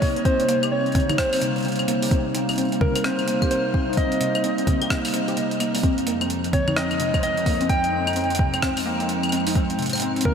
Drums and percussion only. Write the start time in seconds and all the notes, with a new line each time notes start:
0.02 kick, open hi-hat
0.16 closed hi-hat
0.25 kick, closed hi-hat
0.40 closed hi-hat
0.49 closed hi-hat
0.63 closed hi-hat, claves
0.86 closed hi-hat
0.92 kick, closed hi-hat
0.95 closed hi-hat, mid tom
1.00 closed hi-hat
1.09 closed hi-hat, mid tom, claves
1.18 kick, cross-stick, closed hi-hat
1.33 open hi-hat, claves
1.42 closed hi-hat
1.56 closed hi-hat
1.58 closed hi-hat
1.60 closed hi-hat
1.63 closed hi-hat
1.65 closed hi-hat
1.68 closed hi-hat
1.72 closed hi-hat
1.76 closed hi-hat
1.79 closed hi-hat, claves
1.88 closed hi-hat
2.02 open hi-hat
2.11 kick, closed hi-hat
2.35 closed hi-hat
2.49 closed hi-hat, claves
2.51 closed hi-hat
2.53 closed hi-hat
2.56 closed hi-hat
2.58 closed hi-hat
2.61 closed hi-hat
2.65 closed hi-hat
2.69 closed hi-hat
2.72 closed hi-hat
2.81 kick, mid tom
2.96 closed hi-hat, claves
3.04 cross-stick, closed hi-hat
3.19 closed hi-hat, claves
3.28 closed hi-hat
3.42 kick, closed hi-hat, claves
3.51 closed hi-hat
3.74 kick
3.93 closed hi-hat
3.97 kick, closed hi-hat
4.12 closed hi-hat
4.21 closed hi-hat
4.35 closed hi-hat, claves
4.44 closed hi-hat
4.58 closed hi-hat
4.67 kick, closed hi-hat, mid tom
4.82 closed hi-hat, claves
4.90 kick, cross-stick
5.05 open hi-hat, claves
5.14 closed hi-hat
5.28 closed hi-hat
5.37 closed hi-hat
5.51 closed hi-hat
5.60 closed hi-hat, claves
5.75 open hi-hat, claves
5.83 kick, closed hi-hat
5.98 closed hi-hat
6.07 closed hi-hat
6.21 closed hi-hat, claves
6.30 closed hi-hat
6.44 closed hi-hat
6.53 kick, closed hi-hat, mid tom
6.68 mid tom, claves
6.76 cross-stick, closed hi-hat
6.91 closed hi-hat, claves
7.00 closed hi-hat
7.14 kick, closed hi-hat, claves
7.23 closed hi-hat
7.37 closed hi-hat
7.46 kick, open hi-hat
7.61 closed hi-hat
7.69 kick, closed hi-hat
7.84 closed hi-hat
8.07 closed hi-hat, claves
8.13 closed hi-hat
8.16 closed hi-hat
8.24 closed hi-hat
8.30 closed hi-hat
8.35 closed hi-hat
8.39 kick
8.54 closed hi-hat, claves
8.62 kick, cross-stick, closed hi-hat
8.77 open hi-hat, claves
9.00 closed hi-hat
9.09 closed hi-hat
9.23 closed hi-hat, claves
9.29 closed hi-hat, claves
9.32 claves
9.37 claves
9.40 claves
9.47 open hi-hat
9.55 kick, closed hi-hat
9.70 closed hi-hat
9.79 closed hi-hat
9.82 closed hi-hat
9.86 closed hi-hat
9.90 closed hi-hat
9.93 closed hi-hat, claves
9.95 closed hi-hat
9.98 closed hi-hat
10.00 closed hi-hat
10.02 closed hi-hat
10.16 closed hi-hat
10.21 closed hi-hat
10.25 kick, mid tom